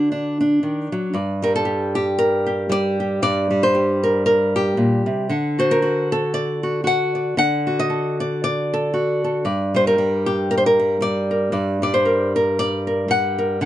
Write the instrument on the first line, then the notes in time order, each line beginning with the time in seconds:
nylon-string guitar
Already playing: D3 D4 F#4
0.12 D4
0.41 D4
0.63 D#3
0.92 F#3
1.14 G2 D5
1.42 G3 A#4
1.56 A4
1.65 G4
1.95 G4
2.19 A#4
2.46 G4
2.69 G3 D5
3.00 G4
3.22 G2 D5
3.51 G3
3.63 C5
3.75 G4
4.03 A#4
4.26 A#4
4.56 G4
4.77 A#2
5.06 C3
5.29 D3 F#5
5.59 F#4 C5
5.71 A#4
5.82 F#4
6.12 A4
6.34 D5
6.63 F#4
6.84 F#4 F#5
7.15 D5
7.37 D3 F#5
7.67 F#4
7.79 D#5
7.90 A4
8.20 D5
8.44 D5
8.74 A4
8.94 F#4
9.24 A4
9.45 G2 D5
9.74 G3 C5
9.87 A#4
9.98 G3
10.26 G4
10.51 A#4
10.57 C5
10.66 A#4
10.80 G3
11.01 G3 D5
11.31 A#4
11.52 G2 D5
11.82 G3 D5
11.94 C5
12.05 A#4
12.36 A#4
12.59 D5
12.87 A#4
13.08 G3 F#5
13.38 A#4
13.61 D3 F#5